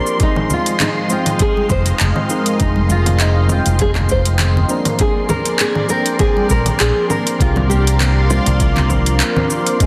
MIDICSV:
0, 0, Header, 1, 7, 480
1, 0, Start_track
1, 0, Tempo, 600000
1, 161, Time_signature, 4, 2, 24, 8
1, 7890, End_track
2, 0, Start_track
2, 0, Title_t, "Synth texture"
2, 0, Program_c, 0, 99
2, 0, Note_on_c, 0, 84, 86
2, 7851, Note_off_c, 0, 84, 0
2, 7890, End_track
3, 0, Start_track
3, 0, Title_t, "Analog synth pad"
3, 0, Program_c, 1, 89
3, 0, Note_on_c, 1, 70, 75
3, 0, Note_on_c, 1, 74, 75
3, 0, Note_on_c, 1, 84, 82
3, 131, Note_off_c, 1, 70, 0
3, 132, Note_off_c, 1, 74, 0
3, 157, Note_on_c, 1, 75, 71
3, 161, Note_on_c, 1, 77, 70
3, 164, Note_on_c, 1, 56, 72
3, 3727, Note_off_c, 1, 75, 0
3, 3729, Note_off_c, 1, 77, 0
3, 3731, Note_off_c, 1, 56, 0
3, 3764, Note_on_c, 1, 70, 78
3, 3765, Note_on_c, 1, 74, 71
3, 5889, Note_off_c, 1, 84, 0
3, 5902, Note_off_c, 1, 74, 0
3, 5917, Note_on_c, 1, 74, 68
3, 5920, Note_on_c, 1, 84, 82
3, 5921, Note_on_c, 1, 77, 75
3, 7810, Note_off_c, 1, 70, 0
3, 7820, Note_off_c, 1, 74, 0
3, 7821, Note_off_c, 1, 84, 0
3, 7822, Note_off_c, 1, 77, 0
3, 7839, Note_on_c, 1, 77, 70
3, 7841, Note_on_c, 1, 75, 67
3, 7843, Note_on_c, 1, 84, 83
3, 7844, Note_on_c, 1, 56, 77
3, 7890, Note_off_c, 1, 56, 0
3, 7890, Note_off_c, 1, 75, 0
3, 7890, Note_off_c, 1, 77, 0
3, 7890, Note_off_c, 1, 84, 0
3, 7890, End_track
4, 0, Start_track
4, 0, Title_t, "Nylon-string guitar"
4, 0, Program_c, 2, 24
4, 183, Note_on_c, 2, 63, 83
4, 419, Note_off_c, 2, 63, 0
4, 427, Note_on_c, 2, 65, 78
4, 650, Note_off_c, 2, 65, 0
4, 653, Note_on_c, 2, 63, 78
4, 716, Note_off_c, 2, 63, 0
4, 899, Note_on_c, 2, 65, 76
4, 1133, Note_on_c, 2, 68, 99
4, 1137, Note_off_c, 2, 65, 0
4, 1368, Note_off_c, 2, 68, 0
4, 1371, Note_on_c, 2, 72, 98
4, 1814, Note_off_c, 2, 72, 0
4, 2088, Note_on_c, 2, 63, 79
4, 2328, Note_off_c, 2, 63, 0
4, 2331, Note_on_c, 2, 65, 81
4, 2568, Note_off_c, 2, 65, 0
4, 2572, Note_on_c, 2, 63, 74
4, 2790, Note_off_c, 2, 63, 0
4, 2813, Note_on_c, 2, 65, 76
4, 3051, Note_on_c, 2, 68, 96
4, 3054, Note_off_c, 2, 65, 0
4, 3115, Note_off_c, 2, 68, 0
4, 3290, Note_on_c, 2, 72, 103
4, 3734, Note_off_c, 2, 72, 0
4, 4006, Note_on_c, 2, 68, 102
4, 4234, Note_off_c, 2, 68, 0
4, 4237, Note_on_c, 2, 70, 96
4, 4480, Note_off_c, 2, 70, 0
4, 4483, Note_on_c, 2, 68, 94
4, 4716, Note_off_c, 2, 68, 0
4, 4719, Note_on_c, 2, 70, 91
4, 4955, Note_off_c, 2, 70, 0
4, 4958, Note_on_c, 2, 68, 100
4, 5203, Note_off_c, 2, 68, 0
4, 5206, Note_on_c, 2, 70, 95
4, 5439, Note_off_c, 2, 70, 0
4, 5442, Note_on_c, 2, 68, 86
4, 5676, Note_off_c, 2, 68, 0
4, 5679, Note_on_c, 2, 70, 97
4, 5927, Note_off_c, 2, 70, 0
4, 5931, Note_on_c, 2, 65, 90
4, 6153, Note_off_c, 2, 65, 0
4, 6156, Note_on_c, 2, 67, 92
4, 6638, Note_off_c, 2, 67, 0
4, 6641, Note_on_c, 2, 65, 81
4, 6879, Note_off_c, 2, 65, 0
4, 6889, Note_on_c, 2, 65, 76
4, 7573, Note_off_c, 2, 65, 0
4, 7890, End_track
5, 0, Start_track
5, 0, Title_t, "Synth keys"
5, 0, Program_c, 3, 88
5, 0, Control_c, 3, 64, 127
5, 0, Note_on_c, 3, 53, 78
5, 0, Note_on_c, 3, 58, 68
5, 0, Note_on_c, 3, 60, 75
5, 0, Note_on_c, 3, 62, 70
5, 0, Note_on_c, 3, 67, 94
5, 0, Note_on_c, 3, 70, 83
5, 130, Note_off_c, 3, 53, 0
5, 132, Note_off_c, 3, 58, 0
5, 134, Note_off_c, 3, 60, 0
5, 136, Note_off_c, 3, 62, 0
5, 138, Note_on_c, 3, 53, 80
5, 140, Note_off_c, 3, 70, 0
5, 147, Note_on_c, 3, 56, 68
5, 156, Note_on_c, 3, 60, 69
5, 165, Note_on_c, 3, 63, 69
5, 170, Control_c, 3, 64, 0
5, 174, Note_off_c, 3, 67, 0
5, 177, Note_on_c, 3, 68, 90
5, 294, Control_c, 3, 64, 127
5, 843, Note_off_c, 3, 53, 0
5, 848, Note_off_c, 3, 56, 0
5, 852, Note_off_c, 3, 60, 0
5, 857, Note_off_c, 3, 63, 0
5, 863, Note_off_c, 3, 68, 0
5, 864, Note_on_c, 3, 53, 86
5, 872, Note_on_c, 3, 56, 78
5, 879, Note_on_c, 3, 60, 80
5, 890, Note_on_c, 3, 63, 74
5, 901, Note_on_c, 3, 79, 92
5, 1806, Note_off_c, 3, 53, 0
5, 1810, Note_off_c, 3, 56, 0
5, 1814, Note_off_c, 3, 60, 0
5, 1819, Note_off_c, 3, 63, 0
5, 1825, Note_off_c, 3, 79, 0
5, 1829, Note_on_c, 3, 53, 76
5, 1833, Note_on_c, 3, 56, 75
5, 1838, Note_on_c, 3, 60, 74
5, 1842, Note_on_c, 3, 63, 72
5, 1847, Note_on_c, 3, 70, 85
5, 2044, Note_off_c, 3, 53, 0
5, 2051, Note_off_c, 3, 56, 0
5, 2054, Note_off_c, 3, 60, 0
5, 2054, Note_on_c, 3, 53, 77
5, 2055, Note_off_c, 3, 63, 0
5, 2058, Note_off_c, 3, 70, 0
5, 2064, Note_on_c, 3, 56, 69
5, 2073, Note_on_c, 3, 60, 74
5, 2081, Note_on_c, 3, 63, 73
5, 2092, Note_on_c, 3, 68, 88
5, 2761, Note_off_c, 3, 53, 0
5, 2767, Note_off_c, 3, 56, 0
5, 2771, Note_off_c, 3, 60, 0
5, 2775, Note_off_c, 3, 63, 0
5, 2780, Note_off_c, 3, 68, 0
5, 2782, Note_on_c, 3, 53, 91
5, 2790, Note_on_c, 3, 56, 77
5, 2800, Note_on_c, 3, 60, 80
5, 2808, Note_on_c, 3, 63, 75
5, 2818, Note_on_c, 3, 79, 99
5, 3725, Note_off_c, 3, 53, 0
5, 3729, Note_off_c, 3, 56, 0
5, 3734, Note_off_c, 3, 60, 0
5, 3738, Note_off_c, 3, 63, 0
5, 3743, Note_off_c, 3, 79, 0
5, 3744, Note_on_c, 3, 53, 80
5, 3750, Note_on_c, 3, 58, 79
5, 3755, Note_on_c, 3, 60, 76
5, 3757, Note_on_c, 3, 62, 77
5, 3763, Note_on_c, 3, 70, 95
5, 3772, Control_c, 3, 64, 0
5, 3895, Control_c, 3, 64, 127
5, 3966, Note_off_c, 3, 53, 0
5, 3969, Note_off_c, 3, 58, 0
5, 3972, Note_off_c, 3, 60, 0
5, 3973, Note_off_c, 3, 62, 0
5, 3976, Note_off_c, 3, 70, 0
5, 3979, Note_on_c, 3, 53, 79
5, 3986, Note_on_c, 3, 58, 77
5, 3996, Note_on_c, 3, 60, 72
5, 4007, Note_on_c, 3, 62, 75
5, 4016, Note_on_c, 3, 68, 91
5, 4684, Note_off_c, 3, 53, 0
5, 4687, Note_off_c, 3, 58, 0
5, 4692, Note_off_c, 3, 60, 0
5, 4698, Note_off_c, 3, 62, 0
5, 4703, Note_off_c, 3, 68, 0
5, 4703, Note_on_c, 3, 53, 93
5, 4712, Note_on_c, 3, 58, 83
5, 4719, Note_on_c, 3, 60, 81
5, 4729, Note_on_c, 3, 62, 79
5, 4740, Note_on_c, 3, 79, 100
5, 5646, Note_off_c, 3, 53, 0
5, 5650, Note_off_c, 3, 58, 0
5, 5654, Note_off_c, 3, 60, 0
5, 5659, Note_off_c, 3, 62, 0
5, 5664, Note_off_c, 3, 79, 0
5, 5670, Note_on_c, 3, 53, 82
5, 5677, Note_on_c, 3, 58, 76
5, 5679, Note_on_c, 3, 60, 76
5, 5683, Note_on_c, 3, 62, 69
5, 5689, Note_on_c, 3, 70, 89
5, 5889, Note_off_c, 3, 53, 0
5, 5893, Note_off_c, 3, 58, 0
5, 5894, Note_off_c, 3, 60, 0
5, 5896, Note_off_c, 3, 62, 0
5, 5899, Note_off_c, 3, 70, 0
5, 5902, Note_on_c, 3, 53, 83
5, 5912, Note_on_c, 3, 58, 76
5, 5919, Note_on_c, 3, 60, 71
5, 5930, Control_c, 3, 64, 0
5, 5930, Note_on_c, 3, 62, 72
5, 5938, Note_on_c, 3, 67, 87
5, 6059, Control_c, 3, 64, 127
5, 6605, Note_off_c, 3, 53, 0
5, 6610, Note_off_c, 3, 58, 0
5, 6614, Note_off_c, 3, 60, 0
5, 6619, Note_off_c, 3, 62, 0
5, 6623, Note_off_c, 3, 67, 0
5, 6636, Note_on_c, 3, 53, 84
5, 6640, Note_on_c, 3, 58, 81
5, 6645, Note_on_c, 3, 60, 80
5, 6648, Note_on_c, 3, 62, 81
5, 6653, Note_on_c, 3, 65, 102
5, 7097, Note_off_c, 3, 53, 0
5, 7099, Note_off_c, 3, 58, 0
5, 7101, Note_off_c, 3, 60, 0
5, 7103, Note_off_c, 3, 62, 0
5, 7105, Note_off_c, 3, 65, 0
5, 7113, Note_on_c, 3, 53, 92
5, 7117, Note_on_c, 3, 58, 81
5, 7123, Note_on_c, 3, 60, 87
5, 7128, Note_on_c, 3, 62, 82
5, 7132, Note_on_c, 3, 70, 101
5, 7457, Note_off_c, 3, 53, 0
5, 7459, Note_off_c, 3, 58, 0
5, 7462, Note_off_c, 3, 60, 0
5, 7464, Note_off_c, 3, 62, 0
5, 7466, Note_off_c, 3, 70, 0
5, 7488, Note_on_c, 3, 53, 72
5, 7490, Note_on_c, 3, 58, 67
5, 7496, Note_on_c, 3, 60, 72
5, 7500, Note_on_c, 3, 62, 70
5, 7505, Note_on_c, 3, 72, 84
5, 7813, Note_off_c, 3, 53, 0
5, 7814, Note_off_c, 3, 58, 0
5, 7817, Note_off_c, 3, 60, 0
5, 7819, Note_off_c, 3, 62, 0
5, 7821, Note_off_c, 3, 72, 0
5, 7829, Note_on_c, 3, 53, 81
5, 7836, Note_on_c, 3, 56, 80
5, 7845, Note_on_c, 3, 60, 80
5, 7850, Control_c, 3, 64, 0
5, 7855, Note_on_c, 3, 63, 73
5, 7863, Note_on_c, 3, 68, 89
5, 7890, Note_off_c, 3, 53, 0
5, 7890, Note_off_c, 3, 56, 0
5, 7890, Note_off_c, 3, 60, 0
5, 7890, Note_off_c, 3, 63, 0
5, 7890, Note_off_c, 3, 68, 0
5, 7890, End_track
6, 0, Start_track
6, 0, Title_t, "Fretless electric bass"
6, 0, Program_c, 4, 35
6, 1363, Note_on_c, 4, 29, 89
6, 1522, Note_off_c, 4, 29, 0
6, 1604, Note_on_c, 4, 29, 91
6, 1682, Note_off_c, 4, 29, 0
6, 2081, Note_on_c, 4, 29, 83
6, 2862, Note_off_c, 4, 29, 0
6, 2928, Note_on_c, 4, 29, 78
6, 3701, Note_off_c, 4, 29, 0
6, 5200, Note_on_c, 4, 34, 95
6, 5361, Note_off_c, 4, 34, 0
6, 5441, Note_on_c, 4, 34, 98
6, 5521, Note_off_c, 4, 34, 0
6, 5920, Note_on_c, 4, 36, 83
6, 6702, Note_off_c, 4, 36, 0
6, 6774, Note_on_c, 4, 36, 83
6, 7362, Note_off_c, 4, 36, 0
6, 7890, End_track
7, 0, Start_track
7, 0, Title_t, "Drums"
7, 52, Note_on_c, 9, 82, 43
7, 132, Note_off_c, 9, 82, 0
7, 158, Note_on_c, 9, 42, 37
7, 160, Note_on_c, 9, 82, 32
7, 161, Note_on_c, 9, 36, 108
7, 238, Note_off_c, 9, 42, 0
7, 240, Note_off_c, 9, 82, 0
7, 241, Note_off_c, 9, 36, 0
7, 291, Note_on_c, 9, 64, 78
7, 371, Note_off_c, 9, 64, 0
7, 400, Note_on_c, 9, 82, 74
7, 404, Note_on_c, 9, 64, 78
7, 480, Note_off_c, 9, 82, 0
7, 484, Note_off_c, 9, 64, 0
7, 530, Note_on_c, 9, 42, 48
7, 531, Note_on_c, 9, 82, 41
7, 610, Note_off_c, 9, 42, 0
7, 611, Note_off_c, 9, 82, 0
7, 639, Note_on_c, 9, 39, 95
7, 639, Note_on_c, 9, 42, 41
7, 639, Note_on_c, 9, 64, 71
7, 641, Note_on_c, 9, 82, 30
7, 719, Note_off_c, 9, 39, 0
7, 719, Note_off_c, 9, 42, 0
7, 719, Note_off_c, 9, 64, 0
7, 721, Note_off_c, 9, 82, 0
7, 879, Note_on_c, 9, 82, 74
7, 959, Note_off_c, 9, 82, 0
7, 1009, Note_on_c, 9, 42, 52
7, 1009, Note_on_c, 9, 64, 71
7, 1010, Note_on_c, 9, 82, 40
7, 1089, Note_off_c, 9, 42, 0
7, 1089, Note_off_c, 9, 64, 0
7, 1090, Note_off_c, 9, 82, 0
7, 1114, Note_on_c, 9, 42, 41
7, 1116, Note_on_c, 9, 82, 32
7, 1120, Note_on_c, 9, 36, 117
7, 1194, Note_off_c, 9, 42, 0
7, 1196, Note_off_c, 9, 82, 0
7, 1200, Note_off_c, 9, 36, 0
7, 1257, Note_on_c, 9, 63, 51
7, 1337, Note_off_c, 9, 63, 0
7, 1356, Note_on_c, 9, 64, 70
7, 1357, Note_on_c, 9, 82, 73
7, 1360, Note_on_c, 9, 36, 56
7, 1436, Note_off_c, 9, 64, 0
7, 1437, Note_off_c, 9, 82, 0
7, 1440, Note_off_c, 9, 36, 0
7, 1486, Note_on_c, 9, 42, 48
7, 1487, Note_on_c, 9, 82, 38
7, 1566, Note_off_c, 9, 42, 0
7, 1567, Note_off_c, 9, 82, 0
7, 1596, Note_on_c, 9, 39, 89
7, 1596, Note_on_c, 9, 42, 41
7, 1598, Note_on_c, 9, 82, 34
7, 1676, Note_off_c, 9, 39, 0
7, 1676, Note_off_c, 9, 42, 0
7, 1678, Note_off_c, 9, 82, 0
7, 1727, Note_on_c, 9, 64, 78
7, 1807, Note_off_c, 9, 64, 0
7, 1837, Note_on_c, 9, 82, 77
7, 1917, Note_off_c, 9, 82, 0
7, 1968, Note_on_c, 9, 42, 50
7, 1969, Note_on_c, 9, 82, 40
7, 2048, Note_off_c, 9, 42, 0
7, 2049, Note_off_c, 9, 82, 0
7, 2077, Note_on_c, 9, 42, 42
7, 2077, Note_on_c, 9, 64, 76
7, 2079, Note_on_c, 9, 36, 101
7, 2079, Note_on_c, 9, 82, 30
7, 2157, Note_off_c, 9, 42, 0
7, 2157, Note_off_c, 9, 64, 0
7, 2159, Note_off_c, 9, 36, 0
7, 2159, Note_off_c, 9, 82, 0
7, 2206, Note_on_c, 9, 63, 67
7, 2286, Note_off_c, 9, 63, 0
7, 2318, Note_on_c, 9, 82, 68
7, 2320, Note_on_c, 9, 64, 80
7, 2398, Note_off_c, 9, 82, 0
7, 2400, Note_off_c, 9, 64, 0
7, 2450, Note_on_c, 9, 42, 53
7, 2450, Note_on_c, 9, 64, 80
7, 2452, Note_on_c, 9, 82, 44
7, 2530, Note_off_c, 9, 42, 0
7, 2530, Note_off_c, 9, 64, 0
7, 2532, Note_off_c, 9, 82, 0
7, 2557, Note_on_c, 9, 39, 92
7, 2557, Note_on_c, 9, 42, 42
7, 2559, Note_on_c, 9, 82, 32
7, 2637, Note_off_c, 9, 39, 0
7, 2637, Note_off_c, 9, 42, 0
7, 2639, Note_off_c, 9, 82, 0
7, 2794, Note_on_c, 9, 64, 77
7, 2796, Note_on_c, 9, 82, 79
7, 2798, Note_on_c, 9, 63, 55
7, 2874, Note_off_c, 9, 64, 0
7, 2876, Note_off_c, 9, 82, 0
7, 2878, Note_off_c, 9, 63, 0
7, 2926, Note_on_c, 9, 42, 52
7, 2927, Note_on_c, 9, 82, 42
7, 3006, Note_off_c, 9, 42, 0
7, 3007, Note_off_c, 9, 82, 0
7, 3032, Note_on_c, 9, 42, 44
7, 3033, Note_on_c, 9, 82, 31
7, 3037, Note_on_c, 9, 36, 105
7, 3112, Note_off_c, 9, 42, 0
7, 3113, Note_off_c, 9, 82, 0
7, 3117, Note_off_c, 9, 36, 0
7, 3162, Note_on_c, 9, 39, 29
7, 3162, Note_on_c, 9, 64, 82
7, 3168, Note_off_c, 9, 64, 0
7, 3168, Note_on_c, 9, 64, 74
7, 3242, Note_off_c, 9, 39, 0
7, 3248, Note_off_c, 9, 64, 0
7, 3272, Note_on_c, 9, 82, 70
7, 3277, Note_on_c, 9, 36, 55
7, 3352, Note_off_c, 9, 82, 0
7, 3357, Note_off_c, 9, 36, 0
7, 3404, Note_on_c, 9, 42, 49
7, 3405, Note_on_c, 9, 82, 39
7, 3484, Note_off_c, 9, 42, 0
7, 3485, Note_off_c, 9, 82, 0
7, 3513, Note_on_c, 9, 39, 100
7, 3513, Note_on_c, 9, 42, 43
7, 3513, Note_on_c, 9, 64, 81
7, 3514, Note_on_c, 9, 82, 34
7, 3593, Note_off_c, 9, 39, 0
7, 3593, Note_off_c, 9, 42, 0
7, 3593, Note_off_c, 9, 64, 0
7, 3594, Note_off_c, 9, 82, 0
7, 3657, Note_on_c, 9, 64, 74
7, 3737, Note_off_c, 9, 64, 0
7, 3753, Note_on_c, 9, 82, 70
7, 3833, Note_off_c, 9, 82, 0
7, 3883, Note_on_c, 9, 42, 51
7, 3883, Note_on_c, 9, 64, 78
7, 3885, Note_on_c, 9, 82, 39
7, 3963, Note_off_c, 9, 42, 0
7, 3963, Note_off_c, 9, 64, 0
7, 3965, Note_off_c, 9, 82, 0
7, 3990, Note_on_c, 9, 42, 41
7, 3992, Note_on_c, 9, 82, 30
7, 3996, Note_on_c, 9, 36, 109
7, 4070, Note_off_c, 9, 42, 0
7, 4072, Note_off_c, 9, 82, 0
7, 4076, Note_off_c, 9, 36, 0
7, 4231, Note_on_c, 9, 64, 74
7, 4233, Note_on_c, 9, 82, 68
7, 4238, Note_off_c, 9, 64, 0
7, 4238, Note_on_c, 9, 64, 71
7, 4313, Note_off_c, 9, 82, 0
7, 4318, Note_off_c, 9, 64, 0
7, 4364, Note_on_c, 9, 42, 56
7, 4365, Note_on_c, 9, 82, 42
7, 4444, Note_off_c, 9, 42, 0
7, 4445, Note_off_c, 9, 82, 0
7, 4473, Note_on_c, 9, 39, 95
7, 4473, Note_on_c, 9, 42, 44
7, 4474, Note_on_c, 9, 82, 30
7, 4553, Note_off_c, 9, 39, 0
7, 4553, Note_off_c, 9, 42, 0
7, 4554, Note_off_c, 9, 82, 0
7, 4604, Note_on_c, 9, 64, 72
7, 4684, Note_off_c, 9, 64, 0
7, 4712, Note_on_c, 9, 82, 76
7, 4792, Note_off_c, 9, 82, 0
7, 4845, Note_on_c, 9, 42, 55
7, 4847, Note_on_c, 9, 82, 38
7, 4925, Note_off_c, 9, 42, 0
7, 4927, Note_off_c, 9, 82, 0
7, 4954, Note_on_c, 9, 42, 45
7, 4954, Note_on_c, 9, 64, 82
7, 4955, Note_on_c, 9, 82, 31
7, 4958, Note_on_c, 9, 36, 112
7, 5034, Note_off_c, 9, 42, 0
7, 5034, Note_off_c, 9, 64, 0
7, 5035, Note_off_c, 9, 82, 0
7, 5038, Note_off_c, 9, 36, 0
7, 5094, Note_on_c, 9, 63, 61
7, 5174, Note_off_c, 9, 63, 0
7, 5197, Note_on_c, 9, 82, 66
7, 5199, Note_on_c, 9, 36, 54
7, 5277, Note_off_c, 9, 82, 0
7, 5279, Note_off_c, 9, 36, 0
7, 5327, Note_on_c, 9, 42, 52
7, 5327, Note_on_c, 9, 64, 77
7, 5329, Note_on_c, 9, 82, 39
7, 5407, Note_off_c, 9, 42, 0
7, 5407, Note_off_c, 9, 64, 0
7, 5409, Note_off_c, 9, 82, 0
7, 5439, Note_on_c, 9, 39, 96
7, 5439, Note_on_c, 9, 42, 46
7, 5441, Note_on_c, 9, 82, 34
7, 5519, Note_off_c, 9, 39, 0
7, 5519, Note_off_c, 9, 42, 0
7, 5521, Note_off_c, 9, 82, 0
7, 5680, Note_on_c, 9, 64, 76
7, 5682, Note_on_c, 9, 82, 76
7, 5760, Note_off_c, 9, 64, 0
7, 5762, Note_off_c, 9, 82, 0
7, 5814, Note_on_c, 9, 42, 54
7, 5815, Note_on_c, 9, 82, 43
7, 5894, Note_off_c, 9, 42, 0
7, 5895, Note_off_c, 9, 82, 0
7, 5919, Note_on_c, 9, 36, 109
7, 5925, Note_on_c, 9, 42, 46
7, 5926, Note_on_c, 9, 82, 32
7, 5999, Note_off_c, 9, 36, 0
7, 6005, Note_off_c, 9, 42, 0
7, 6006, Note_off_c, 9, 82, 0
7, 6047, Note_on_c, 9, 63, 80
7, 6056, Note_on_c, 9, 64, 77
7, 6127, Note_off_c, 9, 63, 0
7, 6136, Note_off_c, 9, 64, 0
7, 6160, Note_on_c, 9, 64, 82
7, 6168, Note_on_c, 9, 82, 74
7, 6240, Note_off_c, 9, 64, 0
7, 6248, Note_off_c, 9, 82, 0
7, 6298, Note_on_c, 9, 42, 55
7, 6300, Note_on_c, 9, 82, 40
7, 6378, Note_off_c, 9, 42, 0
7, 6380, Note_off_c, 9, 82, 0
7, 6403, Note_on_c, 9, 39, 97
7, 6403, Note_on_c, 9, 42, 47
7, 6403, Note_on_c, 9, 64, 78
7, 6405, Note_on_c, 9, 82, 30
7, 6483, Note_off_c, 9, 39, 0
7, 6483, Note_off_c, 9, 42, 0
7, 6483, Note_off_c, 9, 64, 0
7, 6485, Note_off_c, 9, 82, 0
7, 6643, Note_on_c, 9, 82, 75
7, 6645, Note_on_c, 9, 63, 56
7, 6723, Note_off_c, 9, 82, 0
7, 6725, Note_off_c, 9, 63, 0
7, 6771, Note_on_c, 9, 42, 56
7, 6771, Note_on_c, 9, 64, 76
7, 6773, Note_on_c, 9, 82, 41
7, 6851, Note_off_c, 9, 42, 0
7, 6851, Note_off_c, 9, 64, 0
7, 6853, Note_off_c, 9, 82, 0
7, 6880, Note_on_c, 9, 42, 46
7, 6881, Note_on_c, 9, 36, 112
7, 6882, Note_on_c, 9, 82, 33
7, 6960, Note_off_c, 9, 42, 0
7, 6961, Note_off_c, 9, 36, 0
7, 6962, Note_off_c, 9, 82, 0
7, 7011, Note_on_c, 9, 64, 99
7, 7015, Note_on_c, 9, 39, 29
7, 7091, Note_off_c, 9, 64, 0
7, 7095, Note_off_c, 9, 39, 0
7, 7120, Note_on_c, 9, 64, 79
7, 7121, Note_on_c, 9, 36, 52
7, 7122, Note_on_c, 9, 82, 73
7, 7200, Note_off_c, 9, 64, 0
7, 7201, Note_off_c, 9, 36, 0
7, 7202, Note_off_c, 9, 82, 0
7, 7251, Note_on_c, 9, 42, 53
7, 7252, Note_on_c, 9, 82, 37
7, 7331, Note_off_c, 9, 42, 0
7, 7332, Note_off_c, 9, 82, 0
7, 7360, Note_on_c, 9, 39, 105
7, 7360, Note_on_c, 9, 42, 49
7, 7362, Note_on_c, 9, 82, 33
7, 7440, Note_off_c, 9, 39, 0
7, 7440, Note_off_c, 9, 42, 0
7, 7442, Note_off_c, 9, 82, 0
7, 7491, Note_on_c, 9, 64, 82
7, 7492, Note_off_c, 9, 64, 0
7, 7492, Note_on_c, 9, 64, 76
7, 7572, Note_off_c, 9, 64, 0
7, 7602, Note_on_c, 9, 82, 73
7, 7682, Note_off_c, 9, 82, 0
7, 7732, Note_on_c, 9, 42, 55
7, 7734, Note_on_c, 9, 82, 39
7, 7812, Note_off_c, 9, 42, 0
7, 7814, Note_off_c, 9, 82, 0
7, 7842, Note_on_c, 9, 36, 115
7, 7842, Note_on_c, 9, 42, 47
7, 7843, Note_on_c, 9, 82, 31
7, 7890, Note_off_c, 9, 36, 0
7, 7890, Note_off_c, 9, 42, 0
7, 7890, Note_off_c, 9, 82, 0
7, 7890, End_track
0, 0, End_of_file